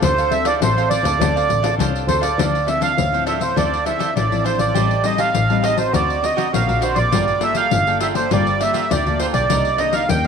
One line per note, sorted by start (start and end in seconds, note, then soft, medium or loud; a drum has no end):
0.00 0.52 D2 loud
0.00 0.58 D3 medium
0.00 0.11 C4 medium
0.00 0.16 D4 soft
0.00 0.12 F4 medium
0.00 0.12 A4 medium
0.00 0.16 A4 medium
0.00 0.16 C5 medium
0.00 0.33 C5 medium
0.00 pandeiro medium
0.04 0.17 F5 medium
0.18 0.31 A4 medium
0.18 0.31 C5 medium
0.18 0.31 F5 medium
0.18 pandeiro soft
0.30 0.48 C4 medium
0.30 0.49 F4 medium
0.30 0.49 A4 medium
0.30 0.47 E5 loud
0.30 muted cavaquinho stroke soft
0.30 pandeiro medium
0.45 0.61 A4 medium
0.45 0.60 C5 medium
0.45 0.60 D5 medium
0.45 0.59 F5 medium
0.45 pandeiro medium
0.61 0.99 A1 medium
0.61 1.17 A2 medium
0.61 0.71 C4 medium
0.61 0.75 D4 soft
0.61 0.71 F4 medium
0.61 0.75 A4 medium
0.61 0.72 A4 medium
0.61 0.89 C5 medium
0.61 0.76 C5 soft
0.61 0.76 F5 medium
0.61 pandeiro medium
0.77 1.16 C4 medium
0.77 1.16 F4 medium
0.77 1.17 A4 medium
0.77 1.05 A4 medium
0.77 1.04 C5 medium
0.77 1.03 F5 medium
0.77 pandeiro soft
0.89 1.75 D5 medium
0.89 pandeiro medium
1.03 1.17 D2 medium
1.03 1.20 A4 medium
1.03 1.19 C5 medium
1.03 1.18 F5 medium
1.03 pandeiro medium
1.20 1.45 D2 medium
1.20 1.77 D3 soft
1.20 1.60 C4 medium
1.20 1.34 D4 medium
1.20 1.60 F4 medium
1.20 1.34 A4 medium
1.20 1.61 A4 medium
1.20 1.35 C5 medium
1.20 1.35 F5 medium
1.20 pandeiro medium
1.36 1.48 A4 soft
1.36 1.49 C5 medium
1.36 1.49 F5 medium
1.36 pandeiro soft
1.48 1.76 A1 medium
1.48 muted cavaquinho stroke soft
1.48 pandeiro medium
1.63 2.04 C4 medium
1.63 2.04 F4 medium
1.63 2.04 A4 medium
1.63 1.79 A4 medium
1.63 1.78 C5 medium
1.63 1.77 F5 medium
1.63 pandeiro medium
1.79 2.06 C2 medium
1.79 2.36 A2 medium
1.79 2.07 D4 medium
1.79 2.08 A4 medium
1.79 2.09 C5 medium
1.79 2.09 F5 medium
1.79 pandeiro medium
1.96 pandeiro soft
2.07 2.35 D2 medium
2.07 2.28 C4 medium
2.07 2.22 D4 soft
2.07 2.28 F4 medium
2.07 2.28 A4 medium
2.07 2.23 A4 medium
2.07 2.22 C5 medium
2.07 2.22 C5 soft
2.07 2.20 F5 soft
2.07 pandeiro medium
2.21 2.38 A4 medium
2.21 2.37 C5 medium
2.21 2.68 D5 medium
2.21 2.36 F5 medium
2.21 pandeiro medium
2.38 2.89 D2 medium
2.38 2.95 D3 medium
2.38 2.56 F3 medium
2.38 2.56 C4 soft
2.38 2.65 D4 medium
2.38 2.56 E4 medium
2.38 2.66 A4 medium
2.38 2.67 C5 medium
2.38 2.67 F5 medium
2.38 pandeiro medium
2.55 pandeiro soft
2.66 2.95 F3 medium
2.66 2.95 C4 medium
2.66 2.80 D4 soft
2.66 2.96 E4 medium
2.66 2.80 A4 soft
2.66 2.80 C5 soft
2.66 2.82 E5 medium
2.66 2.81 F5 medium
2.66 pandeiro medium
2.81 2.91 D4 medium
2.81 2.91 A4 medium
2.81 2.91 C5 medium
2.81 2.92 F5 medium
2.81 3.24 F5 medium
2.81 pandeiro medium
2.98 3.48 D2 medium
2.98 3.54 A2 medium
2.98 pandeiro medium
3.12 3.37 F3 medium
3.12 3.38 C4 medium
3.12 3.38 E4 medium
3.12 3.26 A4 soft
3.12 3.27 C5 soft
3.12 3.27 F5 soft
3.12 pandeiro soft
3.26 3.40 D4 medium
3.26 3.41 A4 medium
3.26 3.40 C5 medium
3.26 3.43 E5 medium
3.26 3.39 F5 medium
3.26 pandeiro medium
3.40 3.51 F3 medium
3.40 3.51 C4 medium
3.40 3.52 E4 medium
3.40 3.56 A4 soft
3.40 3.57 C5 medium
3.40 3.56 C5 soft
3.40 3.55 F5 soft
3.40 pandeiro medium
3.56 3.82 D2 medium
3.56 4.13 D3 soft
3.56 3.74 F3 soft
3.56 3.74 C4 soft
3.56 3.84 D4 medium
3.56 3.75 E4 medium
3.56 3.85 A4 medium
3.56 3.85 C5 medium
3.56 3.85 D5 medium
3.56 3.86 F5 medium
3.56 pandeiro medium
3.74 pandeiro soft
3.85 4.14 F3 medium
3.85 4.14 C4 medium
3.85 3.98 D4 soft
3.85 4.14 E4 medium
3.85 3.98 A4 soft
3.85 3.99 C5 soft
3.85 4.14 E5 medium
3.85 3.99 F5 soft
3.85 pandeiro medium
3.99 4.09 D4 medium
3.99 4.09 A4 medium
3.99 4.10 C5 medium
3.99 4.10 F5 medium
3.99 pandeiro medium
4.16 4.29 A1 medium
4.16 4.72 A2 medium
4.16 4.43 D4 soft
4.16 4.43 A4 soft
4.16 4.45 C5 medium
4.16 4.44 D5 medium
4.16 4.45 F5 medium
4.16 pandeiro medium
4.31 4.57 A1 medium
4.31 4.71 F3 medium
4.31 4.71 C4 medium
4.31 4.71 E4 medium
4.31 pandeiro soft
4.44 4.59 D4 medium
4.44 4.59 A4 medium
4.44 4.59 C5 medium
4.44 4.57 F5 medium
4.44 pandeiro medium
4.59 4.72 A1 medium
4.59 4.75 A4 soft
4.59 4.74 C5 soft
4.59 5.06 D5 medium
4.59 4.73 F5 soft
4.59 pandeiro medium
4.74 5.26 A1 medium
4.74 5.32 A2 soft
4.74 4.93 G3 medium
4.74 4.93 C4 soft
4.74 4.93 D#4 medium
4.74 5.03 G4 medium
4.74 5.04 C5 medium
4.74 5.04 D#5 medium
4.74 5.05 A5 medium
4.74 pandeiro medium
4.91 pandeiro soft
5.04 5.32 G3 medium
5.04 5.32 C4 medium
5.04 5.33 D#4 medium
5.04 5.17 G4 soft
5.04 5.18 C5 soft
5.04 5.20 D#5 medium
5.04 5.18 D#5 medium
5.04 5.18 A5 medium
5.04 pandeiro medium
5.18 5.28 G4 medium
5.18 5.28 C5 medium
5.18 5.29 D#5 medium
5.18 5.65 F5 medium
5.18 5.29 A5 medium
5.18 pandeiro medium
5.34 5.85 A1 medium
5.34 5.91 A2 medium
5.34 pandeiro medium
5.49 5.74 G3 medium
5.49 5.75 C4 medium
5.49 5.75 D#4 medium
5.49 5.62 C5 soft
5.49 5.63 D#5 soft
5.49 5.63 A5 soft
5.49 pandeiro soft
5.63 5.77 G4 medium
5.63 5.78 C5 medium
5.63 5.78 D#5 medium
5.63 5.77 D#5 medium
5.63 5.75 A5 medium
5.63 pandeiro medium
5.77 6.18 C4 medium
5.77 6.18 F#4 medium
5.77 6.18 A#4 medium
5.77 5.93 C5 medium
5.77 5.93 C5 soft
5.77 5.92 D#5 soft
5.77 5.92 A5 soft
5.77 pandeiro medium
5.93 6.19 D2 medium
5.93 6.50 D3 soft
5.93 6.21 F#4 medium
5.93 6.22 A#4 medium
5.93 6.23 C5 medium
5.93 6.23 D5 medium
5.93 6.25 D5 medium
5.93 pandeiro medium
6.10 pandeiro soft
6.22 6.63 C4 medium
6.22 6.35 F#4 soft
6.22 6.63 F#4 medium
6.22 6.63 A#4 medium
6.22 6.36 A#4 soft
6.22 6.36 C5 soft
6.22 6.36 D5 soft
6.22 6.51 D#5 medium
6.22 pandeiro medium
6.36 6.47 F#4 medium
6.36 6.47 A#4 medium
6.36 6.47 C5 medium
6.36 6.47 D5 medium
6.36 pandeiro medium
6.52 6.66 A#1 medium
6.52 7.09 D3 medium
6.52 6.80 F#4 soft
6.52 6.81 A#4 soft
6.52 6.81 C5 soft
6.52 6.82 D5 medium
6.52 6.84 F5 medium
6.52 pandeiro medium
6.67 6.94 A#1 medium
6.67 7.08 C4 medium
6.67 7.08 F#4 medium
6.67 7.08 A#4 medium
6.67 pandeiro soft
6.81 6.96 F#4 medium
6.81 6.96 A#4 medium
6.81 6.95 C5 medium
6.81 6.98 C5 medium
6.81 6.94 D5 medium
6.81 pandeiro medium
6.95 7.10 A#1 medium
6.95 7.11 A#4 soft
6.95 7.11 C5 soft
6.95 7.10 D5 soft
6.95 7.44 D5 medium
6.95 pandeiro medium
7.11 7.63 G1 medium
7.11 7.69 G3 medium
7.11 7.30 A#3 medium
7.11 7.40 F4 medium
7.11 7.30 F4 medium
7.11 7.30 A4 medium
7.11 7.41 A#4 medium
7.11 7.42 D5 medium
7.11 7.42 G5 medium
7.11 pandeiro medium
7.28 pandeiro soft
7.40 7.81 A#3 medium
7.40 7.81 F4 medium
7.40 7.55 F4 soft
7.40 7.81 A4 medium
7.40 7.55 A#4 medium
7.40 7.55 D5 medium
7.40 7.56 E5 medium
7.40 7.56 G5 medium
7.40 pandeiro medium
7.55 7.66 F4 medium
7.55 7.66 A#4 medium
7.55 7.66 D5 medium
7.55 7.98 F5 loud
7.55 7.66 G5 medium
7.55 pandeiro medium
7.71 8.22 G1 medium
7.71 8.28 D3 medium
7.71 pandeiro medium
7.86 8.12 A#3 medium
7.86 8.12 F4 medium
7.86 8.12 A4 medium
7.86 8.00 A#4 soft
7.86 8.01 D5 soft
7.86 8.01 G5 soft
7.86 pandeiro soft
8.00 8.15 F4 medium
8.00 8.15 A#4 medium
8.00 8.14 D5 medium
8.00 8.08 E5 medium
8.00 8.13 G5 medium
8.00 pandeiro medium
8.14 8.25 A#3 medium
8.14 8.26 F4 medium
8.14 8.26 A4 medium
8.14 8.30 A#4 soft
8.14 8.31 C5 medium
8.14 8.30 D5 soft
8.14 8.29 G5 soft
8.14 pandeiro medium
8.31 8.56 G1 loud
8.31 8.87 G3 medium
8.31 8.49 A#3 soft
8.31 8.59 F4 medium
8.31 8.49 F4 soft
8.31 8.49 A4 medium
8.31 8.59 A#4 medium
8.31 8.60 D5 medium
8.31 8.63 D5 medium
8.31 8.61 G5 medium
8.31 pandeiro medium
8.47 pandeiro soft
8.60 9.00 A#3 medium
8.60 9.00 F4 medium
8.60 8.72 F4 soft
8.60 9.00 A4 medium
8.60 8.73 A#4 soft
8.60 8.74 D5 soft
8.60 8.92 E5 medium
8.60 8.74 G5 soft
8.60 pandeiro medium
8.74 8.84 F4 medium
8.74 8.84 A#4 medium
8.74 8.84 D5 medium
8.74 8.84 G5 medium
8.74 pandeiro medium
8.90 9.03 D2 medium
8.90 9.47 D3 medium
8.90 9.18 F4 soft
8.90 9.19 A#4 soft
8.90 9.18 D5 medium
8.90 9.20 D5 soft
8.90 9.20 G5 medium
8.90 pandeiro medium
9.06 9.31 D2 medium
9.06 9.45 A#3 medium
9.06 9.45 F4 medium
9.06 9.46 A4 medium
9.06 pandeiro soft
9.19 9.33 F4 medium
9.19 9.34 A#4 medium
9.19 9.27 C5 medium
9.19 9.33 D5 medium
9.19 9.32 G5 medium
9.19 pandeiro medium
9.33 9.47 B1 medium
9.33 9.49 A#4 soft
9.33 9.80 D5 medium
9.33 9.48 D5 soft
9.33 9.48 G5 soft
9.33 pandeiro medium
9.49 10.00 C2 medium
9.49 10.06 C3 medium
9.49 9.67 D#3 medium
9.49 9.68 A#3 medium
9.49 9.68 D4 medium
9.49 9.77 D#4 medium
9.49 9.78 A#4 medium
9.49 9.79 C5 medium
9.49 9.79 D#5 medium
9.49 pandeiro medium
9.65 pandeiro soft
9.78 10.19 D#3 soft
9.78 10.19 A#3 medium
9.78 10.19 D4 medium
9.78 9.91 D#4 soft
9.78 9.92 A#4 medium
9.78 9.92 C5 soft
9.78 9.94 D#5 medium
9.78 9.92 D#5 medium
9.78 pandeiro medium
9.92 10.02 D#4 medium
9.92 10.03 A#4 medium
9.92 10.03 C5 medium
9.92 10.03 D#5 medium
9.92 10.09 F5 medium
9.92 pandeiro medium
10.09 10.27 D#2 medium
10.09 10.27 G2 medium
10.09 10.24 G5 loud
10.09 pandeiro medium
10.24 10.27 D#3 medium